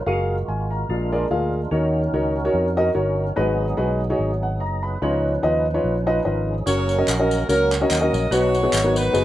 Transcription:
0.06 fingered electric bass F#1, tonewheel organ G#3 F4 F#4 G#4, upright piano F#4 G#4 A#4 F5
0.13 tonewheel organ A#4
0.48 fingered electric bass G#1, upright piano G#5
0.71 upright piano A#5
0.89 fingered electric bass A#1, upright piano A#2, tonewheel organ G#3 D4 F4 A#4
1.12 upright piano F4 G#4 A#4 D5
1.31 fingered electric bass D2, upright piano F4 G#4 A#4 F5
1.71 fingered electric bass D#2, upright piano D#3 D#4 F#4 A#4 C#5, tonewheel organ C#4 D#4 F#4 A#4
2.13 fingered electric bass C#2, upright piano D#4 F#4 A#4 C#5
2.45 upright piano D#4 F#4 A#4 C#5
2.54 fingered electric bass F2
2.77 upright piano D#4 F#4 A#4 D#5
2.94 fingered electric bass G1, upright piano D#4 F#4 A#4 C#5
3.36 fingered electric bass G#1, upright piano G#2 D#4 F#4 G#4 B4, tonewheel organ F#3 B3 D#4 G#4
3.77 fingered electric bass B1, upright piano D#4 F#4 G#4 B4
4.10 upright piano D#4 F#4 G#4 C#5
4.19 fingered electric bass G#1
4.43 upright piano F#5
4.60 fingered electric bass F#1, tonewheel organ D#5, upright piano A#5
4.83 tonewheel organ B4, upright piano B5
5.02 fingered electric bass C#2, upright piano C#3 D#4 F4 B4 C#5, tonewheel organ F3 C#4 D#4 B4
5.43 fingered electric bass D#2, upright piano D#4 F4 B4 D#5
5.74 upright piano D#4 F4 B4 C#5
5.84 fingered electric bass A#1
6.06 upright piano D#4 F4 B4 D#5
6.25 fingered electric bass G#1, upright piano D#4 F4 B4 D#5, tonewheel organ A#4
6.49 tonewheel organ G#4
6.66 fingered electric bass F#1, tonewheel organ F#3 A#3 C#4 A#4, upright piano C#4 F#4 A#4 C#5, saxophone section F#4 A#4 C#5, tambourine
6.89 tambourine
6.98 upright piano C#4 F#4 A#4 D#5
7.08 fingered electric bass A#1, saxophone section C#4 F#4 A#4, clap, tambourine
7.19 upright piano C#4 F#4 A#4 D#5
7.31 tambourine
7.48 fingered electric bass C#2, upright piano C#4 F#4 A#4 C#5, saxophone section C#4 F#4 A#4, tambourine
7.71 saxophone section C#5, clap, tambourine
7.81 upright piano C#4 F#4 A#4 D#5
7.91 fingered electric bass D#2, saxophone section F#4 A#4 D#5, clap, tambourine
8.01 upright piano C#4 F#4 A#4 D#5
8.13 fingered electric bass A#1, tambourine
8.31 fingered electric bass B1, upright piano B2 B3 D#4 F#4 B4, tonewheel organ F#3 B3 D#4 B4, saxophone section F#4 C#5, tambourine
8.55 tambourine
8.63 upright piano B3 D#4 F#4 G#4
8.73 fingered electric bass G#1, clap, tambourine
8.83 upright piano B3 D#4 F#4 A#4
8.96 saxophone section D#4 F#4 B4, tambourine
9.13 fingered electric bass F#1, upright piano B3 D#4 F#4 G#4, tambourine

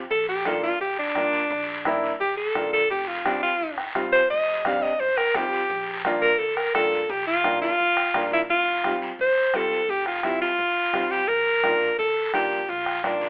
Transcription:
0.10 upright bass A#1, alto saxophone A4, bombo low, high conga, long guiro
0.29 alto saxophone G4
0.45 upright piano A#3 D4 F4, alto saxophone A4, bombo rim, high conga, short guiro
0.63 alto saxophone F4, short guiro
0.81 upright bass D2, alto saxophone G4, high conga, long guiro
0.99 alto saxophone D4
1.15 upright bass A#1, upright piano A#3 D4 F4, bombo low, bombo rim, high conga, short guiro
1.33 short guiro
1.50 upright bass A#1, bombo low, high conga, long guiro
1.85 upright piano A#3 D4 E4, bombo rim, high conga, short guiro
2.04 short guiro
2.20 upright bass D2, alto saxophone G4, high conga, long guiro
2.37 alto saxophone A4
2.55 upright bass A#1, upright piano A#3 D4 F4, bombo low, bombo rim, high conga, low conga, short guiro
2.73 alto saxophone A4, short guiro
2.90 upright bass F1, alto saxophone G4, bombo low, high conga, long guiro
3.08 alto saxophone F4
3.25 upright piano G3 C4 F4, alto saxophone D4, bombo rim, high conga, short guiro
3.43 alto saxophone F4, short guiro
3.60 upright bass G1, high conga, long guiro
3.78 bombo rim
3.95 upright bass F1, upright piano G3 C4 F4, bombo low, bombo rim, high conga, short guiro
4.13 alto saxophone C5, short guiro
4.30 upright bass F1, alto saxophone D#5, bombo low, high conga, long guiro
4.65 upright piano G3 C4 D4, alto saxophone F5, bombo rim, high conga, short guiro
4.82 alto saxophone D#5, short guiro
5.00 upright bass G1, alto saxophone C5, high conga, long guiro
5.18 alto saxophone A#4, bombo rim
5.34 upright bass F1, upright piano G3 C4 F4, alto saxophone G4, bombo low, bombo rim, high conga, low conga, short guiro
5.53 short guiro
5.70 upright bass A#1, bombo low, high conga, long guiro
6.05 upright piano A#3 D4 F4, bombo rim, high conga, short guiro
6.22 alto saxophone A#4, short guiro
6.39 upright bass D2, alto saxophone A4, high conga, long guiro
6.57 alto saxophone A#4, bombo rim
6.74 upright bass A#1, upright piano A#3 D4 F4, alto saxophone A4, bombo low, bombo rim, high conga, short guiro
6.92 short guiro
7.09 upright bass A#1, alto saxophone G4, bombo low, high conga, long guiro
7.27 alto saxophone F4
7.44 upright piano A#3 D4 F4, bombo rim, high conga, short guiro
7.62 alto saxophone F4, low conga, short guiro
7.79 upright bass D2, high conga, long guiro
7.97 bombo rim
8.14 upright bass A#1, upright piano A#3 D4 F4, bombo low, bombo rim, high conga, low conga, short guiro
8.32 alto saxophone E4, short guiro
8.49 upright bass F1, alto saxophone F4, bombo low, high conga, long guiro
8.84 upright piano G3 C4 F4, bombo rim, high conga, short guiro
9.02 short guiro
9.19 upright bass G1, alto saxophone C5, bombo low, high conga, long guiro
9.54 upright bass F1, upright piano G3 C4 F4, alto saxophone A4, bombo low, bombo rim, high conga, short guiro
9.71 short guiro
9.89 upright bass F1, alto saxophone G4, bombo low, high conga, long guiro
10.06 alto saxophone F4, bombo rim
10.23 upright piano G3 C4 F4, alto saxophone E4, bombo rim, high conga, short guiro
10.41 alto saxophone F4, short guiro
10.59 upright bass G1, bombo low, high conga, long guiro
10.93 upright bass F1, upright piano G3 C4 F4, bombo rim, high conga, low conga, short guiro
11.11 alto saxophone G4, short guiro
11.28 upright bass A#1, alto saxophone A#4, bombo low, high conga, long guiro
11.64 upright piano A#3 D4 F4, bombo rim, high conga, short guiro
11.81 short guiro
11.98 upright bass D2, alto saxophone A4, bombo low, high conga, long guiro
12.33 upright bass A#1, upright piano A#3 D4 F4, alto saxophone G4, bombo low, bombo rim, high conga, short guiro
12.51 short guiro
12.68 upright bass A#1, alto saxophone F4, bombo low, high conga, long guiro
12.86 bombo rim
13.03 upright piano A#3 D4 F4, alto saxophone D4, bombo rim, high conga, short guiro
13.21 low conga, short guiro

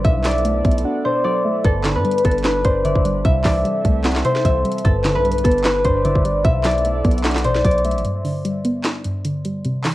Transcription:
Already playing: harp A4 C5 D5
0.04 808-style bass B1, synth pluck B2, ambient pad B3 A4 D5, soft synth lead E5, harp E5, kick, closed hi-hat
0.24 synth pluck F#3, harp D5, snare, clap, closed hi-hat, open hi-hat
0.31 closed hi-hat
0.38 closed hi-hat
0.45 synth pluck A3, closed hi-hat
0.65 808-style bass B1, synth pluck B3, kick, closed hi-hat
0.71 closed hi-hat
0.78 closed hi-hat
0.85 synth pluck D4, soft synth lead F#5
1.05 synth pluck B2, harp C5, soft synth lead D5
1.24 synth pluck F#3, harp D5
1.45 synth pluck A3, soft synth lead E5
1.65 808-style bass G1, synth pluck G2, ambient pad G3 D4 B4, harp A4, soft synth lead B4, kick, closed hi-hat
1.84 synth pluck D3, snare, clap, closed hi-hat
1.95 808-style bass G2, harp B4
2.05 synth pluck G3, closed hi-hat
2.11 closed hi-hat
2.18 closed hi-hat
2.25 808-style bass G1, synth pluck B3, harp A4, kick, closed hi-hat
2.31 closed hi-hat
2.38 closed hi-hat
2.44 synth pluck D4, harp B4, snare, clap, closed hi-hat
2.65 808-style bass G1, synth pluck G2, harp C5, soft synth lead D5, kick, closed hi-hat
2.84 808-style bass G1, synth pluck D3, harp D5, soft synth lead E5, closed hi-hat
2.95 808-style bass G1, kick
3.05 808-style bass G1, synth pluck G3, soft synth lead D5, closed hi-hat
3.25 808-style bass C2, synth pluck C3, ambient pad C4 A4 E5, harp E5, soft synth lead E5, kick, closed hi-hat
3.44 808-style bass C2, synth pluck E3, harp D5, kick, snare, clap, open hi-hat
3.65 synth pluck G3, closed hi-hat
3.85 808-style bass C2, synth pluck A3, kick, closed hi-hat
4.04 synth pluck C4, soft synth lead F#5, snare, clap, closed hi-hat
4.11 snare, clap, closed hi-hat
4.18 closed hi-hat
4.25 synth pluck C3, harp C5, soft synth lead E5, closed hi-hat
4.35 snare
4.45 808-style bass C2, synth pluck E3, harp E5, kick, closed hi-hat
4.65 synth pluck G3, closed hi-hat
4.71 closed hi-hat
4.78 closed hi-hat
4.85 808-style bass G1, synth pluck G2, ambient pad G3 D4 B4, harp A4, soft synth lead B4, kick, closed hi-hat
5.04 synth pluck D3, snare, clap, closed hi-hat
5.15 808-style bass B1, harp B4
5.25 synth pluck G3, closed hi-hat
5.31 closed hi-hat
5.38 closed hi-hat
5.44 808-style bass G1, synth pluck B3, harp A4, kick, closed hi-hat
5.51 closed hi-hat
5.58 closed hi-hat
5.64 synth pluck D4, harp B4, snare, clap, closed hi-hat
5.84 808-style bass G1, synth pluck G2, harp C5, soft synth lead D5, kick, closed hi-hat
6.04 808-style bass G1, synth pluck D3, harp D5, soft synth lead E5, closed hi-hat
6.15 808-style bass G1, kick
6.25 808-style bass G1, synth pluck G3, soft synth lead D5, closed hi-hat
6.44 808-style bass B1, synth pluck B2, ambient pad B3 A4 D5, soft synth lead E5, harp E5, kick, closed hi-hat
6.64 synth pluck F#3, harp D5, snare, clap, closed hi-hat, open hi-hat
6.71 closed hi-hat
6.78 closed hi-hat
6.85 synth pluck A3, closed hi-hat
7.05 808-style bass B1, synth pluck B3, kick, closed hi-hat
7.11 closed hi-hat
7.18 closed hi-hat
7.24 synth pluck D4, soft synth lead F#5, snare, clap, closed hi-hat
7.31 snare, clap, closed hi-hat
7.38 closed hi-hat
7.45 808-style bass A1, synth pluck B2, harp C5, soft synth lead D5, closed hi-hat
7.55 808-style bass B1, snare
7.64 808-style bass B1, synth pluck F#3, harp D5, kick, closed hi-hat
7.71 closed hi-hat
7.78 closed hi-hat
7.85 synth pluck A3, soft synth lead E5, closed hi-hat
7.91 808-style bass A1, closed hi-hat
7.98 closed hi-hat
8.05 synth pluck G2, closed hi-hat
8.25 synth pluck D3, open hi-hat
8.45 synth pluck G3, closed hi-hat
8.65 synth pluck B3, closed hi-hat
8.84 synth pluck D4, snare, clap, closed hi-hat
9.04 synth pluck G2, closed hi-hat
9.25 synth pluck D3, closed hi-hat
9.45 synth pluck G3, closed hi-hat
9.65 synth pluck C3, closed hi-hat
9.84 synth pluck E3, snare, clap, open hi-hat

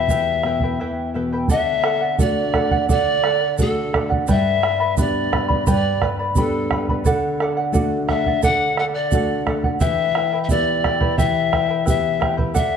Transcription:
Already playing: pan flute E5
0.08 nylon-string guitar E2, charango E4 G4 B4 E5 G5, bombo low, shaker
0.43 nylon-string guitar B2, charango E4 B4 E5 G5, bombo rim
0.60 charango G5, bombo low
0.64 charango E4 B4
0.79 nylon-string guitar E3, charango E4 B4 E5 G5
1.14 nylon-string guitar B2, charango E4 B4 E5 G5
1.33 charango E4 B4 G5
1.48 nylon-string guitar D3, charango A4 D5 F#5, pan flute E5, bombo low, shaker
1.84 charango A4 D5 F#5, bombo rim
2.01 charango D5 F#5
2.18 nylon-string guitar A3 D4 F#4, charango A4 D5 F#5, pan flute D5, bombo low, shaker
2.54 charango A4 D5 F#5, bombo rim, bombo low
2.71 charango D5 F#5, bombo low
2.89 nylon-string guitar D3, charango A4 D5 F#5, pan flute D5, bombo low, shaker
3.24 charango A4 D5 F#5, bombo rim
3.41 charango D5 F#5
3.58 nylon-string guitar A3 D4 F#4, charango A4 D5 F#5, pan flute A4, bombo low, shaker
3.93 charango A4 D5 F#5, bombo rim, bombo low
4.09 charango D5 F#5, bombo low
4.27 nylon-string guitar G2, charango G4 B4 D5 G5 B5, pan flute E5, bombo low, shaker
4.62 charango B4 D5 G5 B5, bombo rim
4.80 charango B4 D5 B5
4.97 nylon-string guitar B3 D4 G4, charango B4 D5 G5 B5, pan flute D5, bombo low, shaker
5.32 charango B4 D5 G5 B5, bombo rim, bombo low
5.48 charango B4 D5 B5, bombo low
5.67 nylon-string guitar G2, charango G4 B4 D5 G5 B5, pan flute D5, bombo low, shaker
6.02 charango B4 D5 G5 B5, bombo rim, bombo low
6.19 charango B4 D5 B5
6.35 nylon-string guitar B3 D4 G4, pan flute A4, charango B4 D5 G5 B5, bombo low, shaker
6.71 charango B4 D5 G5 B5, bombo rim, bombo low
6.89 charango B4 D5 B5, bombo low
7.04 nylon-string guitar D3, charango A4 D5 F#5, bombo low, shaker
7.40 charango A4 D5 F#5, bombo rim
7.57 charango D5 F#5
7.72 nylon-string guitar A3 D4 F#4, charango A4 D5 F#5, bombo low, shaker
8.09 charango A4 D5 F#5, pan flute E5, bombo rim, bombo low
8.26 charango D5 F#5, bombo low
8.43 nylon-string guitar D3, charango A4 D5 F#5, pan flute F#5, bombo low, shaker
8.77 charango A4 D5 F#5, pan flute F#5, bombo rim
8.94 pan flute D5, charango D5 F#5
9.11 nylon-string guitar A3 D4 F#4, charango A4 D5 F#5, bombo low, shaker
9.47 charango A4 D5 F#5, bombo rim, bombo low
9.64 charango D5 F#5, bombo low
9.80 nylon-string guitar E3, charango E4 G4 B4 E5 G5, pan flute E5, bombo low, shaker
10.15 charango E4 B4 E5 G5, bombo rim
10.33 charango E4 B4 G5
10.43 pan flute E5
10.49 nylon-string guitar B3 E4 G4, charango E4 B4 E5 G5, pan flute D5, bombo low, shaker
10.84 charango E4 B4 E5 G5, bombo rim, bombo low
11.01 charango E4 B4 G5, bombo low
11.18 nylon-string guitar E3, charango E4 G4 B4 E5 G5, pan flute E5, bombo low, shaker
11.52 charango E4 B4 E5 G5, bombo rim, bombo low
11.69 charango E4 B4 G5
11.85 nylon-string guitar B3 E4 G4, charango E4 B4 E5 G5, pan flute E5, bombo low, shaker
12.20 charango E4 B4 E5 G5, bombo rim, bombo low
12.37 charango E4 B4 G5, bombo low
12.54 charango A4 D5 F#5, pan flute E5, bombo low, shaker

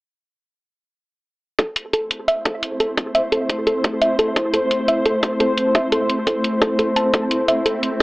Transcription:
1.59 synth drone A3 C4 E4 C5, synth pluck A4, kick, closed hi-hat
1.76 closed hi-hat
1.93 synth pluck A4, closed hi-hat
2.11 closed hi-hat
2.28 synth pluck E5, closed hi-hat
2.45 synth pluck A4, kick, closed hi-hat
2.63 closed hi-hat
2.80 synth pluck A4, closed hi-hat
2.97 kick, closed hi-hat
3.15 synth pluck E5, closed hi-hat
3.32 synth pluck A4, closed hi-hat
3.50 kick, closed hi-hat
3.67 synth pluck A4, closed hi-hat
3.84 kick, closed hi-hat
4.02 synth pluck E5, closed hi-hat
4.19 synth pluck A4, closed hi-hat
4.36 kick, closed hi-hat
4.54 synth pluck A4, closed hi-hat
4.71 closed hi-hat
4.88 synth pluck E5, closed hi-hat
5.06 synth pluck A4, closed hi-hat
5.23 kick, closed hi-hat
5.40 synth pluck A4, closed hi-hat
5.58 closed hi-hat
5.75 synth pluck E5, kick, closed hi-hat
5.92 synth pluck A4, closed hi-hat
6.10 closed hi-hat
6.27 synth pluck A4, kick, closed hi-hat
6.44 closed hi-hat
6.62 synth pluck A4, kick, closed hi-hat
6.79 synth pluck A4, closed hi-hat
6.96 synth pluck A5, closed hi-hat
7.14 synth pluck A4, synth drone E5, kick, closed hi-hat
7.31 closed hi-hat
7.48 synth pluck E5, closed hi-hat
7.66 synth pluck A4, closed hi-hat
7.83 closed hi-hat

